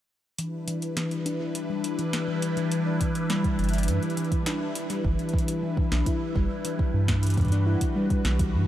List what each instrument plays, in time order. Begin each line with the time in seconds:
0.38 synth pluck E3, analog synth pad G3 D4 E4 B4, closed hi-hat
0.68 synth pluck E3, closed hi-hat
0.82 closed hi-hat
0.97 synth pluck E3, snare, closed hi-hat
1.11 closed hi-hat
1.26 synth pluck D4, closed hi-hat
1.40 synth pluck E4
1.55 closed hi-hat
1.70 synth pluck G3
1.84 closed hi-hat
1.99 synth pluck E3, closed hi-hat
2.13 snare, closed hi-hat
2.28 synth pluck E3
2.42 closed hi-hat
2.57 synth pluck E3, closed hi-hat
2.72 closed hi-hat
2.86 synth pluck D4
3.01 synth pluck E4, kick, closed hi-hat
3.15 closed hi-hat
3.30 synth pluck G3, snare, closed hi-hat
3.44 kick, closed hi-hat
3.59 analog synth bass G1, synth pluck E3, closed hi-hat
3.64 closed hi-hat
3.69 closed hi-hat
3.73 closed hi-hat
3.78 closed hi-hat
3.83 closed hi-hat
3.88 analog synth bass G2, synth pluck E3, closed hi-hat
4.03 closed hi-hat
4.10 closed hi-hat
4.17 synth pluck E3, closed hi-hat
4.24 closed hi-hat
4.32 kick, closed hi-hat
4.46 synth pluck D4, cross-stick, snare, closed hi-hat
4.61 synth pluck E4
4.75 closed hi-hat
4.90 synth pluck G3, closed hi-hat
5.04 analog synth bass G1, synth pluck E3, analog synth pad G3 D4 E4 B4, kick
5.19 closed hi-hat
5.29 closed hi-hat
5.34 synth pluck E3, kick
5.38 closed hi-hat
5.48 closed hi-hat
5.63 synth pluck E3
5.77 kick
5.92 analog synth bass B1, synth pluck D4, snare
6.06 synth pluck E4, kick, closed hi-hat
6.36 analog synth bass G1, synth pluck G3, kick
6.65 synth pluck E3, closed hi-hat
6.79 kick
6.94 analog synth bass G2, synth pluck E3
7.08 kick, snare, closed hi-hat
7.23 synth pluck E3, closed hi-hat
7.27 closed hi-hat
7.30 closed hi-hat
7.34 kick, closed hi-hat
7.37 analog synth pad F#4, kick, closed hi-hat
7.41 kick, closed hi-hat
7.45 kick, closed hi-hat
7.47 kick, closed hi-hat
7.50 synth pluck D4, kick, closed hi-hat
7.67 synth pluck E4
7.81 kick, closed hi-hat
7.96 synth pluck G3
8.10 kick, closed hi-hat
8.25 analog synth bass B1, synth pluck E3, snare
8.39 kick, closed hi-hat
8.54 analog synth bass G2, synth pluck E3